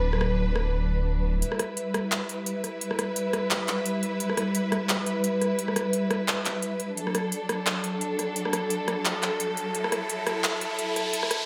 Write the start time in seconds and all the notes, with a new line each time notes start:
Already playing: D1 F#3 D4 B4
0.13 cross-stick
0.21 cross-stick
0.56 cross-stick
1.42 G3 E4 B4, closed hi-hat
1.52 cross-stick
1.59 cross-stick, closed hi-hat
1.77 closed hi-hat
1.94 cross-stick, closed hi-hat
2.12 clap, closed hi-hat
2.29 closed hi-hat
2.46 closed hi-hat
2.64 cross-stick, closed hi-hat
2.81 closed hi-hat
2.91 cross-stick
2.99 cross-stick, closed hi-hat
3.16 closed hi-hat
3.33 cross-stick, closed hi-hat
3.51 clap, closed hi-hat
3.68 clap, closed hi-hat
3.86 closed hi-hat
4.03 closed hi-hat
4.20 closed hi-hat
4.30 cross-stick
4.37 cross-stick, closed hi-hat
4.55 closed hi-hat
4.72 cross-stick, closed hi-hat
4.89 clap, closed hi-hat
5.06 closed hi-hat
5.24 closed hi-hat
5.41 cross-stick, closed hi-hat
5.59 closed hi-hat
5.68 cross-stick
5.76 cross-stick, closed hi-hat
5.93 closed hi-hat
6.11 cross-stick, closed hi-hat
6.28 clap, closed hi-hat
6.45 clap, closed hi-hat
6.62 closed hi-hat
6.80 closed hi-hat
6.97 F#3 D4 A4, closed hi-hat, riser
7.07 cross-stick
7.15 cross-stick, closed hi-hat
7.32 closed hi-hat
7.49 cross-stick, closed hi-hat
7.66 clap, closed hi-hat
7.84 closed hi-hat
8.01 closed hi-hat
8.19 cross-stick, closed hi-hat
8.36 closed hi-hat
8.45 cross-stick
8.53 cross-stick, closed hi-hat
8.70 closed hi-hat
8.88 cross-stick, closed hi-hat
9.05 clap, closed hi-hat
9.23 clap, closed hi-hat
9.40 closed hi-hat
9.57 closed hi-hat
9.74 E4, closed hi-hat
9.84 cross-stick
9.92 cross-stick, closed hi-hat
10.10 closed hi-hat
10.27 cross-stick, closed hi-hat
10.44 clap, closed hi-hat
10.61 closed hi-hat
10.79 closed hi-hat
10.96 cross-stick, closed hi-hat
11.13 closed hi-hat
11.23 cross-stick
11.31 cross-stick, closed hi-hat